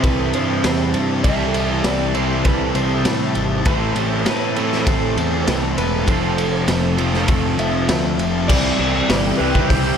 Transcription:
Already playing: overdriven electric guitar C3 E3 G3 C4 E4, analog synth pad C4 G4 E5 A5
0.03 picked electric bass C2, twelve-string acoustic guitar A4, clean electric guitar B4, kick, ride
0.33 picked electric bass G2, twelve-string acoustic guitar G4, clean electric guitar C5, ride
0.64 picked electric bass E2, snare, ride
0.94 picked electric bass G2, ride
1.24 picked electric bass C2, overdriven electric guitar C3 E3 G3 C4 E4, twelve-string acoustic guitar A4, clean electric guitar E5, kick, ride
1.54 ride
1.84 picked electric bass C2, twelve-string acoustic guitar G4, clean electric guitar D5, snare, ride
2.14 overdriven electric guitar C3 E3 G3 C4 E4, clean electric guitar C5, ride
2.45 picked electric bass C2, twelve-string acoustic guitar A4, clean electric guitar B4, kick, ride
2.75 picked electric bass C2, clean electric guitar C5, ride
3.05 picked electric bass A2, snare, ride
3.35 picked electric bass G#1, ride
3.65 picked electric bass A1, overdriven electric guitar A2 E3 A3 C4, analog synth pad C4 A4, twelve-string acoustic guitar A4, clean electric guitar C5, kick, ride
3.69 overdriven electric guitar E4
3.96 picked electric bass A1, ride
4.25 picked electric bass A2, twelve-string acoustic guitar G4, clean electric guitar B4, snare, ride
4.56 overdriven electric guitar A2 E3 A3 C4 E4, clean electric guitar A4, ride
4.72 snare
4.86 picked electric bass A1, twelve-string acoustic guitar A4, clean electric guitar C5, kick, ride
5.16 picked electric bass E2, twelve-string acoustic guitar G4, ride
5.47 picked electric bass C2, snare, ride
5.77 picked electric bass E1, clean electric guitar B4, ride
6.06 picked electric bass F1, distorted electric guitar F2 C3, overdriven electric guitar F3 A3 C4, analog synth pad F4 A4, twelve-string acoustic guitar A4, clean electric guitar C5, kick, ride
6.11 overdriven electric guitar F4
6.38 ride
6.68 picked electric bass F1, twelve-string acoustic guitar G4, snare, ride
6.98 distorted electric guitar F2 C3 F3, overdriven electric guitar A3 C4 F4, ride
7.02 overdriven electric guitar F3
7.14 snare
7.28 picked electric bass F1, twelve-string acoustic guitar A4, kick, ride
7.58 picked electric bass F1, twelve-string acoustic guitar G4, clean electric guitar E5, ride
7.88 picked electric bass D2, snare, ride
8.19 picked electric bass F1, ride
8.48 picked electric bass C2, overdriven electric guitar C3 E3 G3 C4 E4, analog synth pad G4 D5 E5 G5, twelve-string acoustic guitar G4, clean electric guitar D5, kick, crash
8.78 picked electric bass C2, distorted electric guitar C3, overdriven electric guitar E3 G3 C4, twelve-string acoustic guitar A4
8.82 overdriven electric guitar E4
8.94 overdriven electric guitar G3 C4 E4
9.09 picked electric bass G1, distorted electric guitar C3 G3 C4, snare, open hi-hat
9.37 picked electric bass C2, distorted electric guitar C3, overdriven electric guitar E3 G3, twelve-string acoustic guitar G4, clean electric guitar B4
9.42 overdriven electric guitar C4 E4
9.54 overdriven electric guitar G3 C4 E4, kick
9.69 picked electric bass C2, overdriven electric guitar C3 E3 G3 C4 E4, clean electric guitar C5, kick, open hi-hat
9.84 overdriven electric guitar G3 C4 E4

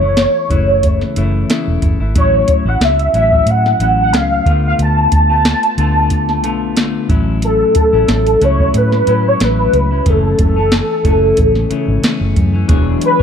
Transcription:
Already playing: fingered electric bass F#1, soft synth lead C#5
0.01 clean electric guitar E3 A3 E4
0.17 snare, closed hi-hat
0.50 fingered electric bass F#1, clean electric guitar C#3 E3 A3 E4, kick, closed hi-hat
0.83 kick, closed hi-hat
1.01 snare
1.16 fingered electric bass F#1, clean electric guitar C#3 E3 A3 E4, closed hi-hat
1.49 clean electric guitar C#3 E3 A3 E4, snare, closed hi-hat
1.68 fingered electric bass E1
1.82 fingered electric bass F#1, kick, closed hi-hat
2.00 fingered electric bass G#1, clean electric guitar E3 A3 E4
2.15 fingered electric bass A1, clean electric guitar A2 F#3 C#4 E4, soft synth lead C#5, kick, closed hi-hat
2.48 kick, closed hi-hat
2.65 fingered electric bass A1, clean electric guitar F#3 C#4 E4, soft synth lead F#5
2.81 fingered electric bass C#2, soft synth lead E5, snare, closed hi-hat
2.99 closed hi-hat
3.14 fingered electric bass A1, clean electric guitar A2 F#3 C#4 E4, soft synth lead E5, closed hi-hat
3.33 kick
3.46 fingered electric bass A2, closed hi-hat
3.50 soft synth lead F#5
3.66 snare
3.79 fingered electric bass A1, clean electric guitar A2 F#3 C#4 E4, closed hi-hat
4.01 soft synth lead F#5
4.13 fingered electric bass C#2, clean electric guitar A2 F#3 C#4, soft synth lead F5, snare, closed hi-hat
4.46 fingered electric bass D2, clean electric guitar D3 A3 B3 F4, kick, closed hi-hat
4.67 soft synth lead F5
4.79 fingered electric bass D2, soft synth lead A5, closed hi-hat
5.12 fingered electric bass D2, kick, closed hi-hat
5.29 clean electric guitar A3 B3 F4
5.45 snare, closed hi-hat
5.63 closed hi-hat
5.78 fingered electric bass D2, clean electric guitar D3 A3 B3 F4, closed hi-hat
6.10 kick, closed hi-hat
6.29 snare
6.43 fingered electric bass B1, clean electric guitar D3 A3 B3 F4, closed hi-hat
6.76 clean electric guitar D3 A3 B3 F4, snare, closed hi-hat
7.09 fingered electric bass A1, clean electric guitar A2 F#3 C#4 E4, kick, closed hi-hat
7.42 soft synth lead A4, closed hi-hat
7.75 kick, closed hi-hat
7.93 fingered electric bass A1, clean electric guitar F#3 C#4 E4
8.08 fingered electric bass A1, snare, closed hi-hat
8.27 closed hi-hat
8.41 fingered electric bass C#2, clean electric guitar A2 F#3 C#4 E4, soft synth lead C#5, closed hi-hat
8.60 kick
8.74 fingered electric bass A2, soft synth lead B4, closed hi-hat
8.92 snare
9.07 clean electric guitar A2 F#3 C#4 E4, fingered electric bass A2, closed hi-hat
9.28 soft synth lead C#5
9.40 fingered electric bass A1, clean electric guitar A2 F#3 C#4 E4, soft synth lead B4, snare, closed hi-hat
9.73 fingered electric bass C#2, closed hi-hat
9.91 clean electric guitar F#3 C#4 E4
10.06 fingered electric bass F#1, clean electric guitar F#2 C#3 E3 A3 C#4, soft synth lead A4, kick, closed hi-hat
10.39 fingered electric bass F#1, kick, closed hi-hat
10.56 clean electric guitar E3 A3 C#4
10.72 snare, closed hi-hat
11.04 fingered electric bass F#1, clean electric guitar C#3 E3 A3 C#4, kick, closed hi-hat
11.37 fingered electric bass A1, kick, closed hi-hat
11.55 snare
11.70 clean electric guitar C#3 E3 A3 C#4, muted fingered electric bass stroke, closed hi-hat
11.88 fingered electric bass G#1
12.02 clean electric guitar C#3 E3 A3 C#4, snare, closed hi-hat
12.21 fingered electric bass F#1
12.36 fingered electric bass F#2, kick, closed hi-hat
12.53 clean electric guitar E3 A3 C#4
12.68 fingered electric bass E1, string machine B2 F#3 G#3 D4 E4, clean electric guitar E3 B3 D4 G#4 C#5, kick, closed hi-hat
13.01 closed hi-hat
13.05 soft synth lead B4
13.19 clean electric guitar C#5

